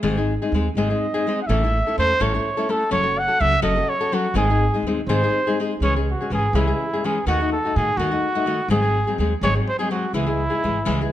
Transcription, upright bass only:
0.03 0.35 G#1 medium
0.52 0.67 D#2 medium
0.75 0.93 G#1 medium
1.49 1.81 A1 medium
1.98 2.12 E2 medium
2.20 2.37 A1 medium
2.91 3.23 F#1 medium
3.41 3.55 C#2 medium
3.62 3.80 F#1 medium
4.34 4.67 G#1 medium
4.83 4.98 D#2 medium
5.07 5.25 G#1 medium
5.80 6.13 C#2 medium
6.30 6.46 G#1 medium
6.53 6.71 C#2 medium
7.26 7.58 D#2 medium
7.76 7.90 A2 medium
7.97 8.14 D#2 medium
8.68 9.00 G#1 medium
9.18 9.33 D#2 medium
9.41 9.58 G#1 medium
10.13 10.46 C#2 medium
10.64 10.79 G#1 medium
10.87 11.05 C#2 medium

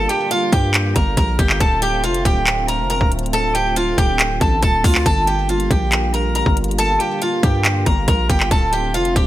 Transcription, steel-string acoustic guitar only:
0.09 0.30 G4 medium
0.09 0.30 G5 medium
0.31 0.52 F4 medium
0.31 0.51 F5 medium
0.52 0.93 G4 medium
0.52 0.93 G5 medium
0.95 1.16 A#4 medium
0.95 1.16 A#5 medium
1.17 1.38 A#4 medium
1.17 1.38 A#5 medium
1.39 1.60 G4 medium
1.39 1.59 G5 medium
1.60 1.81 A4 medium
1.60 1.81 A5 loud
1.82 2.03 G4 medium
1.82 2.02 G5 medium
2.04 2.24 F4 medium
2.04 2.24 F5 medium
2.25 2.66 G4 medium
2.25 2.66 G5 medium
2.68 2.89 A#4 medium
2.68 2.89 A#5 medium
2.90 3.11 A#4 medium
2.90 3.10 A#5 medium
3.33 3.54 A4 medium
3.33 3.53 A5 loud
3.55 3.76 G4 medium
3.55 3.75 G5 medium
3.76 3.97 F4 medium
3.76 3.97 F5 loud
3.98 4.39 G4 medium
3.98 4.38 G5 medium
4.41 4.62 A4 medium
4.41 4.61 A5 medium
4.63 4.83 A4 medium
4.63 4.83 A5 medium
4.84 5.05 F4 medium
4.84 5.05 F5 medium
5.06 5.27 A4 medium
5.06 5.26 A5 loud
5.27 5.48 G4 medium
5.27 5.48 G5 medium
5.49 5.70 F4 medium
5.49 5.69 F5 medium
5.71 6.12 G4 medium
5.71 6.11 G5 medium
6.14 6.35 A#4 medium
6.14 6.34 A#5 medium
6.35 6.56 A#4 medium
6.35 6.56 A#5 medium
6.79 6.99 A4 medium
6.79 6.99 A5 loud
7.00 7.21 G4 medium
7.00 7.20 G5 medium
7.22 7.42 F4 medium
7.22 7.42 F5 medium
7.43 7.84 G4 medium
7.43 7.84 G5 medium
7.86 8.07 A#4 medium
7.86 8.07 A#5 medium
8.08 8.29 A#4 medium
8.08 8.28 A#5 medium
8.30 8.50 G4 medium
8.30 8.50 G5 medium
8.51 8.72 A4 medium
8.51 8.71 A5 medium
8.73 8.93 G4 medium
8.73 8.93 G5 medium
8.94 9.15 F4 medium
8.94 9.15 F5 medium
9.16 9.27 G4 medium
9.16 9.27 G5 medium

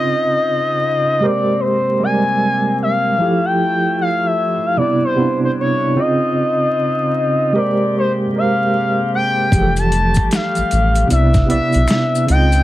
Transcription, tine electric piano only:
0.00 1.00 C#3 medium
0.00 1.01 C4 medium
0.00 1.02 F4 medium
0.00 1.03 D#5 medium
1.20 1.91 G#3 medium
1.20 1.92 G4 medium
1.20 1.92 A#4 medium
1.25 1.93 C5 medium
2.00 3.05 G3 medium
2.00 3.05 G#3 medium
2.00 3.07 A#4 medium
2.05 3.07 D5 medium
3.18 4.55 F3 medium
3.18 4.56 E4 medium
3.18 4.57 G4 medium
3.23 4.58 A4 medium
4.77 5.12 C3 medium
4.77 5.13 B3 medium
4.77 5.14 E4 medium
4.82 5.15 D5 medium
5.16 5.96 C3 medium
5.16 5.96 B3 medium
5.16 5.97 E4 medium
5.21 5.98 D4 medium
5.96 7.32 C#3 medium
5.96 7.33 C4 medium
5.96 7.33 F4 medium
6.00 7.34 D#5 medium
7.53 8.23 G#3 medium
7.53 8.23 G4 medium
7.53 8.24 A#4 medium
7.58 8.25 C5 medium
8.33 9.37 G#3 medium
8.33 9.37 G4 medium
8.33 9.39 A#4 medium
8.38 9.39 C5 medium
9.51 10.88 E3 medium
9.51 10.87 F3 medium
9.51 10.89 G4 medium
9.56 9.62 G#4 medium
9.62 10.93 A4 medium
11.07 11.43 C3 medium
11.07 11.44 B3 medium
11.07 11.45 E4 medium
11.12 11.45 D5 medium
11.46 12.27 C3 medium
11.46 12.28 B3 medium
11.46 12.28 E4 medium
11.51 12.29 D5 medium
12.26 12.63 C#3 medium
12.26 12.63 C4 medium
12.26 12.37 D#4 medium
12.31 12.63 D#5 medium
12.36 12.63 F4 medium

